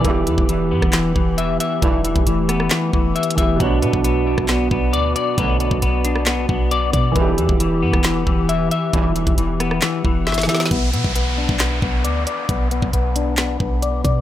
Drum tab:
HH |x-----------x-----------x-----------------------x-----------------------x-----------x-----------|x-----------x-----x-----x-----------x-----------x-----------------------x---x---x---x-----------|x-----------x-----------x-----------------------x-----------------------x-----------x-----------|x-----------x-----------x-----------x-----------x-----------------------x-----------x-----------|
CP |------------------------------------------------x-----------------------------------------------|------------------------------------------------x-----------------------------------------------|------------------------------------------------x-----------------------------------------------|------------------------------------------------x-----------------------------------------------|
SD |------------------------------------------r-----o-----------------------------------------------|------------------------------------r-----r-----o-----------------------------------------------|------------------------------------------r-----o-----------------------------------------------|------------------------------------------r-----o-----------------------------------------------|
BD |o-----------------o-----------------------o-----------------o-----------------------------------|o-----------------o-----------------------------------------o-----------------------o-----------|o-----------------o-----------------------o-----------------o-----------------------------------|o-----------------o-----------------------------------------o-----------------------o-----------|

HH |x-----------x-----------x-----------------------x-----------------------x-----------x-----------|x-----------x-----x-----x-----------x-----------x-----------------------x---x---x---x-----------|x-----------x-----------x-----------------------x-----------------------x-----------x-----------|x-----------x-----------x-----------x-----------x-----------------------x-----------x-----------|
CP |------------------------------------------------x-----------------------------------------------|------------------------------------------------x-----------------------------------------------|------------------------------------------------x-----------------------------------------------|------------------------------------------------x-----------------------------------------------|
SD |------------------------------------------r-----o-----------------------------------------------|------------------------------------r-----r-----o-----------------------o--o--o--o--o--o--o--o--|------------------------------------------------o-----------------------------------------------|------------------------------------------------o-----------------------------------------------|
BD |o-----------------o-----------------------o-----------------o-----------------------------------|o-----------------o-----------------------------------------o-----------------------------------|o-----------------o-----------------------o-----------------o-----------------------------------|o-----------------o-----------------------------------------o-----------------------o-----------|